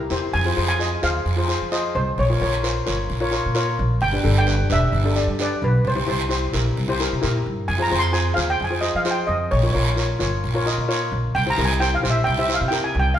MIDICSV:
0, 0, Header, 1, 5, 480
1, 0, Start_track
1, 0, Key_signature, -4, "minor"
1, 0, Tempo, 458716
1, 351, Time_signature, 4, 2, 24, 8
1, 13802, End_track
2, 0, Start_track
2, 0, Title_t, "Steel pan"
2, 0, Program_c, 0, 114
2, 350, Note_on_c, 0, 80, 113
2, 705, Note_off_c, 0, 80, 0
2, 717, Note_on_c, 0, 80, 105
2, 1084, Note_off_c, 0, 80, 0
2, 1084, Note_on_c, 0, 77, 103
2, 1800, Note_on_c, 0, 75, 76
2, 1821, Note_off_c, 0, 77, 0
2, 2045, Note_off_c, 0, 75, 0
2, 2045, Note_on_c, 0, 72, 85
2, 2287, Note_off_c, 0, 72, 0
2, 2294, Note_on_c, 0, 73, 90
2, 2522, Note_off_c, 0, 73, 0
2, 2534, Note_on_c, 0, 73, 75
2, 2972, Note_off_c, 0, 73, 0
2, 4203, Note_on_c, 0, 79, 106
2, 4573, Note_off_c, 0, 79, 0
2, 4585, Note_on_c, 0, 79, 110
2, 4940, Note_off_c, 0, 79, 0
2, 4943, Note_on_c, 0, 76, 103
2, 5672, Note_off_c, 0, 76, 0
2, 5674, Note_on_c, 0, 74, 83
2, 5903, Note_off_c, 0, 74, 0
2, 5904, Note_on_c, 0, 71, 81
2, 6115, Note_off_c, 0, 71, 0
2, 6148, Note_on_c, 0, 72, 91
2, 6365, Note_off_c, 0, 72, 0
2, 6378, Note_on_c, 0, 72, 74
2, 6815, Note_off_c, 0, 72, 0
2, 8036, Note_on_c, 0, 80, 97
2, 8186, Note_on_c, 0, 82, 101
2, 8202, Note_off_c, 0, 80, 0
2, 8357, Note_off_c, 0, 82, 0
2, 8361, Note_on_c, 0, 84, 97
2, 8508, Note_on_c, 0, 80, 92
2, 8524, Note_off_c, 0, 84, 0
2, 8727, Note_on_c, 0, 77, 89
2, 8761, Note_off_c, 0, 80, 0
2, 8806, Note_off_c, 0, 77, 0
2, 8894, Note_on_c, 0, 79, 97
2, 9044, Note_on_c, 0, 80, 84
2, 9072, Note_off_c, 0, 79, 0
2, 9218, Note_on_c, 0, 75, 88
2, 9227, Note_off_c, 0, 80, 0
2, 9376, Note_on_c, 0, 77, 93
2, 9393, Note_off_c, 0, 75, 0
2, 9534, Note_on_c, 0, 79, 80
2, 9553, Note_off_c, 0, 77, 0
2, 9694, Note_off_c, 0, 79, 0
2, 9698, Note_on_c, 0, 75, 91
2, 9953, Note_on_c, 0, 73, 85
2, 9956, Note_off_c, 0, 75, 0
2, 10164, Note_off_c, 0, 73, 0
2, 10177, Note_on_c, 0, 73, 72
2, 10632, Note_off_c, 0, 73, 0
2, 11875, Note_on_c, 0, 79, 103
2, 12035, Note_on_c, 0, 82, 106
2, 12039, Note_off_c, 0, 79, 0
2, 12183, Note_off_c, 0, 82, 0
2, 12191, Note_on_c, 0, 80, 96
2, 12341, Note_off_c, 0, 80, 0
2, 12349, Note_on_c, 0, 79, 99
2, 12500, Note_on_c, 0, 77, 87
2, 12516, Note_off_c, 0, 79, 0
2, 12665, Note_on_c, 0, 76, 80
2, 12671, Note_off_c, 0, 77, 0
2, 12809, Note_on_c, 0, 79, 101
2, 12833, Note_off_c, 0, 76, 0
2, 12964, Note_on_c, 0, 76, 83
2, 12968, Note_off_c, 0, 79, 0
2, 13124, Note_on_c, 0, 77, 82
2, 13142, Note_off_c, 0, 76, 0
2, 13270, Note_on_c, 0, 79, 84
2, 13302, Note_off_c, 0, 77, 0
2, 13436, Note_on_c, 0, 80, 93
2, 13454, Note_off_c, 0, 79, 0
2, 13597, Note_on_c, 0, 79, 96
2, 13617, Note_off_c, 0, 80, 0
2, 13753, Note_on_c, 0, 77, 87
2, 13777, Note_off_c, 0, 79, 0
2, 13802, Note_off_c, 0, 77, 0
2, 13802, End_track
3, 0, Start_track
3, 0, Title_t, "Steel pan"
3, 0, Program_c, 1, 114
3, 110, Note_on_c, 1, 67, 78
3, 111, Note_on_c, 1, 64, 82
3, 120, Note_on_c, 1, 72, 91
3, 327, Note_off_c, 1, 67, 0
3, 328, Note_off_c, 1, 64, 0
3, 332, Note_off_c, 1, 72, 0
3, 475, Note_on_c, 1, 65, 69
3, 475, Note_on_c, 1, 68, 64
3, 484, Note_on_c, 1, 72, 79
3, 545, Note_off_c, 1, 65, 0
3, 545, Note_off_c, 1, 68, 0
3, 549, Note_off_c, 1, 72, 0
3, 590, Note_on_c, 1, 65, 74
3, 594, Note_on_c, 1, 68, 71
3, 597, Note_on_c, 1, 72, 79
3, 738, Note_off_c, 1, 65, 0
3, 741, Note_off_c, 1, 68, 0
3, 742, Note_off_c, 1, 72, 0
3, 824, Note_on_c, 1, 65, 74
3, 833, Note_on_c, 1, 68, 71
3, 840, Note_on_c, 1, 75, 82
3, 976, Note_off_c, 1, 65, 0
3, 980, Note_off_c, 1, 68, 0
3, 984, Note_off_c, 1, 75, 0
3, 1073, Note_on_c, 1, 65, 75
3, 1079, Note_on_c, 1, 68, 70
3, 1082, Note_on_c, 1, 72, 84
3, 1290, Note_off_c, 1, 65, 0
3, 1293, Note_off_c, 1, 68, 0
3, 1295, Note_off_c, 1, 72, 0
3, 1427, Note_on_c, 1, 65, 78
3, 1438, Note_on_c, 1, 68, 72
3, 1443, Note_on_c, 1, 72, 81
3, 1502, Note_off_c, 1, 65, 0
3, 1508, Note_off_c, 1, 68, 0
3, 1510, Note_off_c, 1, 72, 0
3, 1546, Note_on_c, 1, 65, 67
3, 1554, Note_on_c, 1, 68, 62
3, 1558, Note_on_c, 1, 72, 78
3, 1698, Note_off_c, 1, 65, 0
3, 1702, Note_off_c, 1, 68, 0
3, 1704, Note_off_c, 1, 72, 0
3, 1797, Note_on_c, 1, 65, 80
3, 1805, Note_on_c, 1, 68, 72
3, 1806, Note_on_c, 1, 72, 88
3, 2160, Note_off_c, 1, 65, 0
3, 2164, Note_off_c, 1, 68, 0
3, 2165, Note_off_c, 1, 72, 0
3, 2405, Note_on_c, 1, 65, 70
3, 2406, Note_on_c, 1, 70, 63
3, 2415, Note_on_c, 1, 73, 80
3, 2472, Note_off_c, 1, 65, 0
3, 2472, Note_off_c, 1, 70, 0
3, 2477, Note_off_c, 1, 73, 0
3, 2525, Note_on_c, 1, 65, 75
3, 2529, Note_on_c, 1, 70, 71
3, 2535, Note_on_c, 1, 73, 90
3, 2668, Note_off_c, 1, 65, 0
3, 2670, Note_off_c, 1, 70, 0
3, 2673, Note_off_c, 1, 73, 0
3, 2757, Note_on_c, 1, 65, 72
3, 2760, Note_on_c, 1, 70, 68
3, 2762, Note_on_c, 1, 72, 78
3, 2903, Note_off_c, 1, 65, 0
3, 2905, Note_off_c, 1, 70, 0
3, 2906, Note_off_c, 1, 72, 0
3, 2993, Note_on_c, 1, 65, 78
3, 2998, Note_on_c, 1, 70, 72
3, 3001, Note_on_c, 1, 73, 81
3, 3212, Note_off_c, 1, 65, 0
3, 3214, Note_off_c, 1, 70, 0
3, 3215, Note_off_c, 1, 73, 0
3, 3352, Note_on_c, 1, 65, 88
3, 3361, Note_on_c, 1, 70, 82
3, 3363, Note_on_c, 1, 73, 105
3, 3426, Note_off_c, 1, 65, 0
3, 3430, Note_off_c, 1, 70, 0
3, 3431, Note_off_c, 1, 73, 0
3, 3466, Note_on_c, 1, 65, 86
3, 3475, Note_on_c, 1, 70, 76
3, 3481, Note_on_c, 1, 73, 95
3, 3618, Note_off_c, 1, 65, 0
3, 3623, Note_off_c, 1, 70, 0
3, 3626, Note_off_c, 1, 73, 0
3, 3712, Note_on_c, 1, 65, 99
3, 3712, Note_on_c, 1, 70, 91
3, 3725, Note_on_c, 1, 73, 113
3, 4078, Note_off_c, 1, 65, 0
3, 4078, Note_off_c, 1, 70, 0
3, 4085, Note_off_c, 1, 73, 0
3, 4317, Note_on_c, 1, 62, 76
3, 4320, Note_on_c, 1, 67, 60
3, 4329, Note_on_c, 1, 71, 76
3, 4389, Note_off_c, 1, 62, 0
3, 4390, Note_off_c, 1, 67, 0
3, 4395, Note_off_c, 1, 71, 0
3, 4428, Note_on_c, 1, 62, 82
3, 4432, Note_on_c, 1, 67, 73
3, 4438, Note_on_c, 1, 69, 88
3, 4580, Note_off_c, 1, 62, 0
3, 4582, Note_off_c, 1, 67, 0
3, 4585, Note_off_c, 1, 69, 0
3, 4664, Note_on_c, 1, 62, 75
3, 4666, Note_on_c, 1, 67, 71
3, 4674, Note_on_c, 1, 71, 85
3, 4818, Note_off_c, 1, 62, 0
3, 4819, Note_off_c, 1, 67, 0
3, 4823, Note_off_c, 1, 71, 0
3, 4916, Note_on_c, 1, 62, 73
3, 4917, Note_on_c, 1, 67, 69
3, 4922, Note_on_c, 1, 71, 79
3, 5134, Note_off_c, 1, 62, 0
3, 5134, Note_off_c, 1, 67, 0
3, 5136, Note_off_c, 1, 71, 0
3, 5273, Note_on_c, 1, 62, 77
3, 5277, Note_on_c, 1, 67, 71
3, 5287, Note_on_c, 1, 69, 85
3, 5347, Note_off_c, 1, 62, 0
3, 5349, Note_off_c, 1, 67, 0
3, 5354, Note_off_c, 1, 69, 0
3, 5391, Note_on_c, 1, 62, 68
3, 5398, Note_on_c, 1, 74, 77
3, 5401, Note_on_c, 1, 67, 61
3, 5542, Note_off_c, 1, 62, 0
3, 5545, Note_off_c, 1, 74, 0
3, 5547, Note_off_c, 1, 67, 0
3, 5642, Note_on_c, 1, 62, 79
3, 5642, Note_on_c, 1, 67, 69
3, 5657, Note_on_c, 1, 71, 83
3, 6004, Note_off_c, 1, 62, 0
3, 6004, Note_off_c, 1, 67, 0
3, 6011, Note_off_c, 1, 71, 0
3, 6230, Note_on_c, 1, 64, 69
3, 6236, Note_on_c, 1, 67, 66
3, 6237, Note_on_c, 1, 72, 83
3, 6306, Note_off_c, 1, 64, 0
3, 6308, Note_off_c, 1, 67, 0
3, 6309, Note_off_c, 1, 72, 0
3, 6348, Note_on_c, 1, 64, 80
3, 6355, Note_on_c, 1, 67, 72
3, 6359, Note_on_c, 1, 72, 85
3, 6500, Note_off_c, 1, 64, 0
3, 6504, Note_off_c, 1, 67, 0
3, 6505, Note_off_c, 1, 72, 0
3, 6580, Note_on_c, 1, 64, 80
3, 6588, Note_on_c, 1, 67, 71
3, 6597, Note_on_c, 1, 72, 82
3, 6736, Note_off_c, 1, 64, 0
3, 6740, Note_off_c, 1, 67, 0
3, 6745, Note_off_c, 1, 72, 0
3, 6830, Note_on_c, 1, 64, 78
3, 6833, Note_on_c, 1, 67, 72
3, 6841, Note_on_c, 1, 70, 82
3, 7051, Note_off_c, 1, 64, 0
3, 7052, Note_off_c, 1, 67, 0
3, 7056, Note_off_c, 1, 70, 0
3, 7200, Note_on_c, 1, 64, 81
3, 7208, Note_on_c, 1, 67, 84
3, 7212, Note_on_c, 1, 72, 106
3, 7271, Note_off_c, 1, 64, 0
3, 7275, Note_off_c, 1, 67, 0
3, 7277, Note_off_c, 1, 72, 0
3, 7318, Note_on_c, 1, 64, 82
3, 7331, Note_on_c, 1, 67, 73
3, 7331, Note_on_c, 1, 70, 89
3, 7465, Note_off_c, 1, 64, 0
3, 7472, Note_off_c, 1, 67, 0
3, 7472, Note_off_c, 1, 70, 0
3, 7550, Note_on_c, 1, 64, 97
3, 7555, Note_on_c, 1, 67, 80
3, 7562, Note_on_c, 1, 70, 100
3, 7918, Note_off_c, 1, 64, 0
3, 7921, Note_off_c, 1, 67, 0
3, 7924, Note_off_c, 1, 70, 0
3, 8144, Note_on_c, 1, 65, 69
3, 8150, Note_on_c, 1, 68, 66
3, 8157, Note_on_c, 1, 72, 78
3, 8223, Note_off_c, 1, 65, 0
3, 8226, Note_off_c, 1, 68, 0
3, 8230, Note_off_c, 1, 72, 0
3, 8267, Note_on_c, 1, 65, 77
3, 8274, Note_on_c, 1, 68, 74
3, 8284, Note_on_c, 1, 72, 92
3, 8420, Note_off_c, 1, 65, 0
3, 8424, Note_off_c, 1, 68, 0
3, 8428, Note_off_c, 1, 72, 0
3, 8502, Note_on_c, 1, 65, 76
3, 8509, Note_on_c, 1, 68, 72
3, 8514, Note_on_c, 1, 72, 82
3, 8658, Note_off_c, 1, 65, 0
3, 8661, Note_off_c, 1, 68, 0
3, 8663, Note_off_c, 1, 72, 0
3, 8743, Note_on_c, 1, 65, 79
3, 8748, Note_on_c, 1, 68, 74
3, 8749, Note_on_c, 1, 72, 81
3, 8967, Note_off_c, 1, 65, 0
3, 8970, Note_off_c, 1, 68, 0
3, 8971, Note_off_c, 1, 72, 0
3, 9106, Note_on_c, 1, 65, 73
3, 9111, Note_on_c, 1, 68, 69
3, 9123, Note_on_c, 1, 72, 80
3, 9184, Note_off_c, 1, 65, 0
3, 9186, Note_off_c, 1, 68, 0
3, 9193, Note_off_c, 1, 72, 0
3, 9223, Note_on_c, 1, 65, 72
3, 9226, Note_on_c, 1, 68, 61
3, 9235, Note_on_c, 1, 72, 76
3, 9378, Note_off_c, 1, 65, 0
3, 9379, Note_off_c, 1, 68, 0
3, 9384, Note_off_c, 1, 72, 0
3, 9470, Note_on_c, 1, 65, 84
3, 9477, Note_on_c, 1, 68, 75
3, 9477, Note_on_c, 1, 72, 89
3, 9838, Note_off_c, 1, 65, 0
3, 9842, Note_off_c, 1, 68, 0
3, 9842, Note_off_c, 1, 72, 0
3, 10076, Note_on_c, 1, 65, 72
3, 10086, Note_on_c, 1, 70, 66
3, 10086, Note_on_c, 1, 73, 79
3, 10149, Note_off_c, 1, 65, 0
3, 10153, Note_off_c, 1, 70, 0
3, 10153, Note_off_c, 1, 73, 0
3, 10200, Note_on_c, 1, 65, 78
3, 10204, Note_on_c, 1, 70, 75
3, 10210, Note_on_c, 1, 73, 86
3, 10346, Note_off_c, 1, 65, 0
3, 10348, Note_off_c, 1, 70, 0
3, 10351, Note_off_c, 1, 73, 0
3, 10424, Note_on_c, 1, 65, 74
3, 10433, Note_on_c, 1, 70, 67
3, 10438, Note_on_c, 1, 73, 80
3, 10578, Note_off_c, 1, 65, 0
3, 10582, Note_off_c, 1, 70, 0
3, 10585, Note_off_c, 1, 73, 0
3, 10664, Note_on_c, 1, 65, 83
3, 10674, Note_on_c, 1, 70, 65
3, 10678, Note_on_c, 1, 73, 90
3, 10887, Note_off_c, 1, 65, 0
3, 10892, Note_off_c, 1, 70, 0
3, 10894, Note_off_c, 1, 73, 0
3, 11034, Note_on_c, 1, 65, 89
3, 11037, Note_on_c, 1, 70, 80
3, 11046, Note_on_c, 1, 73, 100
3, 11107, Note_off_c, 1, 65, 0
3, 11108, Note_off_c, 1, 70, 0
3, 11113, Note_off_c, 1, 73, 0
3, 11154, Note_on_c, 1, 65, 80
3, 11157, Note_on_c, 1, 70, 76
3, 11163, Note_on_c, 1, 75, 90
3, 11302, Note_off_c, 1, 65, 0
3, 11304, Note_off_c, 1, 70, 0
3, 11306, Note_off_c, 1, 75, 0
3, 11388, Note_on_c, 1, 70, 83
3, 11389, Note_on_c, 1, 65, 96
3, 11393, Note_on_c, 1, 73, 109
3, 11755, Note_off_c, 1, 70, 0
3, 11756, Note_off_c, 1, 65, 0
3, 11758, Note_off_c, 1, 73, 0
3, 11992, Note_on_c, 1, 64, 74
3, 11994, Note_on_c, 1, 67, 66
3, 12002, Note_on_c, 1, 72, 79
3, 12064, Note_off_c, 1, 64, 0
3, 12066, Note_off_c, 1, 67, 0
3, 12069, Note_off_c, 1, 72, 0
3, 12111, Note_on_c, 1, 64, 82
3, 12123, Note_on_c, 1, 67, 72
3, 12125, Note_on_c, 1, 70, 86
3, 12259, Note_off_c, 1, 64, 0
3, 12265, Note_off_c, 1, 67, 0
3, 12266, Note_off_c, 1, 70, 0
3, 12346, Note_on_c, 1, 64, 74
3, 12358, Note_on_c, 1, 67, 72
3, 12360, Note_on_c, 1, 72, 82
3, 12496, Note_off_c, 1, 64, 0
3, 12502, Note_off_c, 1, 67, 0
3, 12503, Note_off_c, 1, 72, 0
3, 12584, Note_on_c, 1, 64, 74
3, 12590, Note_on_c, 1, 67, 71
3, 12593, Note_on_c, 1, 72, 90
3, 12804, Note_off_c, 1, 64, 0
3, 12807, Note_off_c, 1, 67, 0
3, 12809, Note_off_c, 1, 72, 0
3, 12956, Note_on_c, 1, 64, 77
3, 12962, Note_on_c, 1, 67, 71
3, 12967, Note_on_c, 1, 72, 80
3, 13025, Note_off_c, 1, 64, 0
3, 13028, Note_off_c, 1, 67, 0
3, 13030, Note_off_c, 1, 72, 0
3, 13064, Note_on_c, 1, 64, 74
3, 13066, Note_on_c, 1, 67, 62
3, 13072, Note_on_c, 1, 72, 78
3, 13214, Note_off_c, 1, 64, 0
3, 13215, Note_off_c, 1, 67, 0
3, 13218, Note_off_c, 1, 72, 0
3, 13295, Note_on_c, 1, 64, 79
3, 13301, Note_on_c, 1, 67, 78
3, 13308, Note_on_c, 1, 70, 90
3, 13665, Note_off_c, 1, 64, 0
3, 13668, Note_off_c, 1, 67, 0
3, 13671, Note_off_c, 1, 70, 0
3, 13802, End_track
4, 0, Start_track
4, 0, Title_t, "Upright bass"
4, 0, Program_c, 2, 32
4, 111, Note_on_c, 2, 40, 73
4, 328, Note_off_c, 2, 40, 0
4, 357, Note_on_c, 2, 41, 93
4, 555, Note_off_c, 2, 41, 0
4, 601, Note_on_c, 2, 41, 88
4, 999, Note_off_c, 2, 41, 0
4, 1078, Note_on_c, 2, 39, 85
4, 1277, Note_off_c, 2, 39, 0
4, 1310, Note_on_c, 2, 41, 76
4, 1616, Note_off_c, 2, 41, 0
4, 1687, Note_on_c, 2, 53, 71
4, 1981, Note_off_c, 2, 53, 0
4, 2040, Note_on_c, 2, 36, 98
4, 2239, Note_off_c, 2, 36, 0
4, 2282, Note_on_c, 2, 34, 86
4, 2480, Note_off_c, 2, 34, 0
4, 2521, Note_on_c, 2, 34, 96
4, 2920, Note_off_c, 2, 34, 0
4, 3005, Note_on_c, 2, 31, 86
4, 3202, Note_off_c, 2, 31, 0
4, 3239, Note_on_c, 2, 34, 81
4, 3542, Note_off_c, 2, 34, 0
4, 3616, Note_on_c, 2, 46, 77
4, 3907, Note_off_c, 2, 46, 0
4, 3966, Note_on_c, 2, 34, 98
4, 4163, Note_off_c, 2, 34, 0
4, 4202, Note_on_c, 2, 31, 97
4, 4401, Note_off_c, 2, 31, 0
4, 4442, Note_on_c, 2, 31, 102
4, 4841, Note_off_c, 2, 31, 0
4, 4915, Note_on_c, 2, 28, 95
4, 5117, Note_off_c, 2, 28, 0
4, 5151, Note_on_c, 2, 31, 92
4, 5458, Note_off_c, 2, 31, 0
4, 5516, Note_on_c, 2, 43, 78
4, 5816, Note_off_c, 2, 43, 0
4, 5881, Note_on_c, 2, 35, 99
4, 6080, Note_off_c, 2, 35, 0
4, 6117, Note_on_c, 2, 36, 90
4, 6318, Note_off_c, 2, 36, 0
4, 6357, Note_on_c, 2, 36, 94
4, 6759, Note_off_c, 2, 36, 0
4, 6841, Note_on_c, 2, 34, 91
4, 7040, Note_off_c, 2, 34, 0
4, 7081, Note_on_c, 2, 36, 88
4, 7384, Note_off_c, 2, 36, 0
4, 7453, Note_on_c, 2, 48, 79
4, 7546, Note_off_c, 2, 48, 0
4, 7570, Note_on_c, 2, 46, 74
4, 7781, Note_off_c, 2, 46, 0
4, 7806, Note_on_c, 2, 43, 85
4, 8019, Note_off_c, 2, 43, 0
4, 8041, Note_on_c, 2, 41, 97
4, 8241, Note_off_c, 2, 41, 0
4, 8283, Note_on_c, 2, 41, 90
4, 8682, Note_off_c, 2, 41, 0
4, 8758, Note_on_c, 2, 39, 90
4, 8959, Note_off_c, 2, 39, 0
4, 9005, Note_on_c, 2, 41, 84
4, 9306, Note_off_c, 2, 41, 0
4, 9361, Note_on_c, 2, 53, 73
4, 9659, Note_off_c, 2, 53, 0
4, 9712, Note_on_c, 2, 41, 90
4, 9915, Note_off_c, 2, 41, 0
4, 9958, Note_on_c, 2, 34, 99
4, 10159, Note_off_c, 2, 34, 0
4, 10194, Note_on_c, 2, 34, 90
4, 10596, Note_off_c, 2, 34, 0
4, 10671, Note_on_c, 2, 31, 85
4, 10874, Note_off_c, 2, 31, 0
4, 10919, Note_on_c, 2, 34, 85
4, 11222, Note_off_c, 2, 34, 0
4, 11275, Note_on_c, 2, 46, 81
4, 11574, Note_off_c, 2, 46, 0
4, 11633, Note_on_c, 2, 34, 92
4, 11834, Note_off_c, 2, 34, 0
4, 11875, Note_on_c, 2, 36, 97
4, 12075, Note_off_c, 2, 36, 0
4, 12116, Note_on_c, 2, 36, 103
4, 12515, Note_off_c, 2, 36, 0
4, 12595, Note_on_c, 2, 34, 90
4, 12794, Note_off_c, 2, 34, 0
4, 12835, Note_on_c, 2, 36, 87
4, 13136, Note_off_c, 2, 36, 0
4, 13194, Note_on_c, 2, 48, 85
4, 13490, Note_off_c, 2, 48, 0
4, 13548, Note_on_c, 2, 36, 98
4, 13747, Note_off_c, 2, 36, 0
4, 13802, End_track
5, 0, Start_track
5, 0, Title_t, "Drums"
5, 107, Note_on_c, 9, 73, 62
5, 212, Note_off_c, 9, 73, 0
5, 353, Note_on_c, 9, 74, 72
5, 458, Note_off_c, 9, 74, 0
5, 842, Note_on_c, 9, 73, 78
5, 946, Note_off_c, 9, 73, 0
5, 1077, Note_on_c, 9, 73, 70
5, 1182, Note_off_c, 9, 73, 0
5, 1318, Note_on_c, 9, 74, 68
5, 1423, Note_off_c, 9, 74, 0
5, 1563, Note_on_c, 9, 73, 76
5, 1668, Note_off_c, 9, 73, 0
5, 1800, Note_on_c, 9, 73, 70
5, 1905, Note_off_c, 9, 73, 0
5, 2280, Note_on_c, 9, 74, 69
5, 2385, Note_off_c, 9, 74, 0
5, 2764, Note_on_c, 9, 73, 76
5, 2869, Note_off_c, 9, 73, 0
5, 2999, Note_on_c, 9, 73, 68
5, 3104, Note_off_c, 9, 73, 0
5, 3241, Note_on_c, 9, 74, 65
5, 3345, Note_off_c, 9, 74, 0
5, 3475, Note_on_c, 9, 73, 65
5, 3580, Note_off_c, 9, 73, 0
5, 3713, Note_on_c, 9, 73, 74
5, 3817, Note_off_c, 9, 73, 0
5, 4193, Note_on_c, 9, 74, 66
5, 4297, Note_off_c, 9, 74, 0
5, 4676, Note_on_c, 9, 73, 72
5, 4781, Note_off_c, 9, 73, 0
5, 4917, Note_on_c, 9, 73, 72
5, 5021, Note_off_c, 9, 73, 0
5, 5158, Note_on_c, 9, 74, 67
5, 5263, Note_off_c, 9, 74, 0
5, 5397, Note_on_c, 9, 73, 73
5, 5501, Note_off_c, 9, 73, 0
5, 5639, Note_on_c, 9, 73, 71
5, 5743, Note_off_c, 9, 73, 0
5, 6118, Note_on_c, 9, 74, 78
5, 6223, Note_off_c, 9, 74, 0
5, 6599, Note_on_c, 9, 73, 83
5, 6704, Note_off_c, 9, 73, 0
5, 6838, Note_on_c, 9, 73, 77
5, 6943, Note_off_c, 9, 73, 0
5, 7088, Note_on_c, 9, 74, 74
5, 7192, Note_off_c, 9, 74, 0
5, 7326, Note_on_c, 9, 73, 76
5, 7431, Note_off_c, 9, 73, 0
5, 7563, Note_on_c, 9, 73, 78
5, 7668, Note_off_c, 9, 73, 0
5, 8040, Note_on_c, 9, 74, 81
5, 8145, Note_off_c, 9, 74, 0
5, 8519, Note_on_c, 9, 73, 78
5, 8624, Note_off_c, 9, 73, 0
5, 8758, Note_on_c, 9, 73, 77
5, 8863, Note_off_c, 9, 73, 0
5, 8998, Note_on_c, 9, 74, 66
5, 9103, Note_off_c, 9, 74, 0
5, 9236, Note_on_c, 9, 73, 68
5, 9340, Note_off_c, 9, 73, 0
5, 9469, Note_on_c, 9, 73, 69
5, 9574, Note_off_c, 9, 73, 0
5, 9956, Note_on_c, 9, 74, 70
5, 10061, Note_off_c, 9, 74, 0
5, 10438, Note_on_c, 9, 73, 77
5, 10543, Note_off_c, 9, 73, 0
5, 10676, Note_on_c, 9, 73, 70
5, 10780, Note_off_c, 9, 73, 0
5, 10923, Note_on_c, 9, 74, 67
5, 11028, Note_off_c, 9, 74, 0
5, 11167, Note_on_c, 9, 73, 80
5, 11272, Note_off_c, 9, 73, 0
5, 11413, Note_on_c, 9, 73, 79
5, 11518, Note_off_c, 9, 73, 0
5, 11889, Note_on_c, 9, 74, 88
5, 11994, Note_off_c, 9, 74, 0
5, 12365, Note_on_c, 9, 73, 88
5, 12470, Note_off_c, 9, 73, 0
5, 12608, Note_on_c, 9, 73, 77
5, 12713, Note_off_c, 9, 73, 0
5, 12837, Note_on_c, 9, 74, 75
5, 12942, Note_off_c, 9, 74, 0
5, 13078, Note_on_c, 9, 73, 86
5, 13182, Note_off_c, 9, 73, 0
5, 13309, Note_on_c, 9, 73, 80
5, 13414, Note_off_c, 9, 73, 0
5, 13802, End_track
0, 0, End_of_file